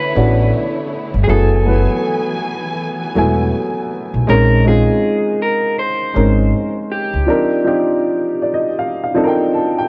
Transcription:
Already playing: string section D3 A3 E4 C#5, upright piano E3 B3 C#4 D4 A4, clean electric guitar B4
0.15 upright bass A1, upright piano E3 B3 C#4 D4 F#4
1.14 upright bass G1
1.24 string section E3 B3 G#5, upright piano F#3 A3, clean electric guitar G#4
1.29 upright bass F#1, upright piano B3 E4 G#4, clean electric guitar A4
1.65 upright piano F#3 A3 B3 E4 B4
3.15 upright bass E1, upright piano F#3 A3 B3 E4 G#5
4.14 upright bass B1
4.27 upright bass A#1, upright piano G#3 C4 C#4 D#4 A#4, clean electric guitar A#4
4.64 upright piano G#3 C4 C#4 D#4 F4, clean electric guitar G#4
5.42 clean electric guitar A#4
5.79 clean electric guitar C5
6.14 upright bass G#1, upright piano G#3 C4 C#4 D#4 A#4
6.92 clean electric guitar G4
7.14 upright bass C#2
7.27 upright piano F3 C4 D4 D#4 A#4
7.64 upright piano F3 C4 D4 D#4 G4
8.42 upright piano D5
8.54 upright piano D#5
8.79 upright piano F5
9.04 upright piano F5
9.14 upright piano F3 C4 D4 D#4 A4
9.24 upright piano A#4 G5
9.54 upright piano A5
9.78 upright piano G5

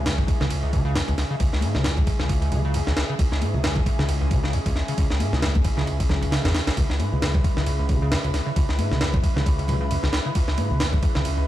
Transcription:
Already playing: picked electric bass C#2, analog synth pad C#3 G#3 E4 G#4
0.05 acid bass C#2, snare, ride
0.18 acid bass C#2, kick, low conga
0.27 acid bass C#2, kick, ride
0.41 picked electric bass C#2, acid bass C#3, snare
0.50 acid bass C#2, ride
0.63 acid bass C#2
0.72 picked electric bass C#2, acid bass C#3, kick, ride
0.85 acid bass C#3
0.95 acid bass C#2, snare, ride
1.08 acid bass C#2, picked electric bass C#2, ride
1.18 acid bass C#2, snare, ride
1.30 acid bass C#3
1.40 acid bass C#2, picked electric bass C#2, kick, ride
1.52 acid bass C#2, snare
1.61 acid bass G#2, ride, high conga
1.75 picked electric bass C#2, acid bass C#3, snare
1.84 acid bass C#2, snare, ride
1.97 acid bass C#2, kick, low conga
2.07 acid bass C#2, kick, ride
2.19 picked electric bass C#2, acid bass C#3, snare
2.29 acid bass C#2, kick, ride
2.41 acid bass C#2, ride
2.51 picked electric bass C#2, acid bass C#3, ride, low conga
2.65 acid bass C#3
2.74 acid bass C#2, ride
2.87 acid bass C#2, picked electric bass C#2, snare
2.97 acid bass C#2, snare, ride
3.09 acid bass C#3
3.19 acid bass C#2, picked electric bass C#2, kick, ride
3.32 acid bass C#2, snare
3.42 acid bass G#2, ride, high conga
3.54 picked electric bass C#2, acid bass C#3
3.64 acid bass C#2, snare, ride
3.76 acid bass C#2, kick, low conga
3.86 acid bass C#2, kick, ride
3.99 picked electric bass C#2, acid bass C#3, snare
4.09 acid bass C#2, ride
4.21 acid bass C#2
4.30 picked electric bass C#2, acid bass C#3, kick, ride
4.43 acid bass C#3, snare
4.53 acid bass C#2, ride
4.66 picked electric bass C#2, acid bass C#2, kick, ride
4.75 acid bass C#2, snare
4.88 acid bass C#3, ride
4.98 acid bass C#2, picked electric bass C#2, kick, ride
5.10 acid bass C#2, snare
5.20 acid bass G#2, ride, high conga
5.33 picked electric bass C#2, acid bass C#3, snare
5.42 acid bass C#2, snare, ride
5.55 acid bass C#2, kick, high conga, low conga
5.64 acid bass C#2, kick, ride
5.77 picked electric bass C#2, acid bass C#3, snare
5.86 acid bass C#2, ride
5.99 acid bass C#2, kick, ride
6.09 acid bass C#2, picked electric bass C#2, snare, low conga
6.21 acid bass B1, ride
6.31 acid bass C#3, snare, ride
6.44 picked electric bass G#1, acid bass E2, snare, ride
6.54 acid bass D#2, snare, ride
6.67 acid bass C#2, snare, ride
6.76 acid bass C#2, picked electric bass C#2, analog synth pad B4, kick, ride
6.90 acid bass C#2, snare
6.99 acid bass G#2, ride, high conga
7.12 picked electric bass C#2, acid bass C#3
7.21 acid bass C#2, snare, ride
7.34 acid bass C#2, kick, low conga
7.44 acid bass C#2, kick, ride
7.57 picked electric bass C#2, acid bass C#3, snare
7.66 acid bass C#2, ride
7.79 acid bass C#2
7.89 picked electric bass C#2, acid bass C#3, kick, ride
8.02 acid bass C#3
8.11 acid bass C#2, snare, ride
8.24 acid bass C#2, picked electric bass C#2, ride
8.34 acid bass C#2, snare, ride
8.46 acid bass C#3
8.56 acid bass C#2, picked electric bass C#2, kick, ride
8.69 acid bass C#2, snare
8.78 acid bass G#2, ride, high conga
8.91 picked electric bass C#2, acid bass C#3, snare
9.01 acid bass C#2, snare, ride
9.14 acid bass C#2, kick, low conga
9.23 acid bass C#2, kick, ride
9.36 picked electric bass C#2, acid bass C#3, snare
9.46 acid bass C#2, kick, ride
9.58 acid bass C#2, ride
9.68 picked electric bass C#2, acid bass C#3, ride, low conga
9.81 acid bass C#3
9.90 acid bass C#2, ride
10.03 acid bass C#2, picked electric bass C#2, snare
10.13 acid bass C#2, snare, ride
10.26 acid bass C#3
10.35 picked electric bass C#2, acid bass C#2, kick, ride
10.48 acid bass C#2, snare
10.57 acid bass G#2, ride, high conga
10.71 picked electric bass C#2, acid bass C#3
10.80 acid bass C#2, snare, ride
10.93 acid bass C#2, kick, low conga
11.03 acid bass C#2, kick, ride
11.15 picked electric bass C#2, acid bass C#3, snare
11.25 acid bass C#2, ride
11.37 acid bass C#2

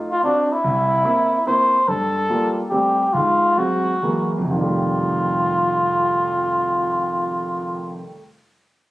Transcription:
Already playing: grand piano A3 D#4 F4
0.12 muted trumpet F4
0.23 grand piano C4 D4 F#4, muted trumpet D4
0.53 muted trumpet E4
0.64 grand piano C2
1.05 grand piano A#3 C4 E4
1.46 grand piano A#3 C4 E4, muted trumpet C5
1.88 grand piano G2, muted trumpet A4
2.29 grand piano G3 A#3 F4
2.70 grand piano G3 A3 C4, muted trumpet G4
3.13 grand piano G#2, muted trumpet F4
3.57 grand piano F#3 G#3 C4, muted trumpet F#4
4.02 grand piano E3 F#3 G#3 A#3
4.38 grand piano F2
4.45 grand piano C3
4.51 grand piano D#3, muted trumpet F4
4.57 grand piano G3
4.63 grand piano A3

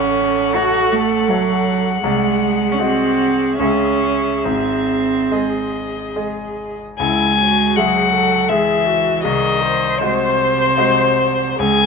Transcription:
Already playing: grand piano A1 A2, cello C#4, viola A4, violin F#5
0.54 grand piano A3 F#4 C#5, cello F#4
0.93 cello A3
1.29 cello F#3, grand piano A3 F#4 C#5
2.03 grand piano C2 C3, cello G#3, viola G#4
2.72 cello C#4
2.79 grand piano G#3 F#4 D#5, cello C4
3.59 grand piano C#2 C#3 G#3 G#4 E5, cello C#4, violin E5
4.45 grand piano G#1 G#2, cello C4
5.31 grand piano G#3 G#4 D#5, violin D#5
6.16 grand piano G#3 G#4 D#5
6.98 grand piano C#2, cello G#3, viola E4, violin G#5
7.38 viola F#4
7.76 cello F#3, grand piano G#3 G#4 E5, viola G#4, violin F#5
8.14 viola A4
8.49 cello E3, grand piano G#3 G#4 E5, viola G#4, violin E5
8.87 viola F#4
9.24 grand piano C2, cello D#3, viola G#4, violin D#5
9.61 viola C5
9.98 cello C3, grand piano G#3 F#4 D#5, violin C5
10.77 grand piano G#3 F#4 D#5
11.59 grand piano C#2, cello G#3, viola G#4, violin G#5

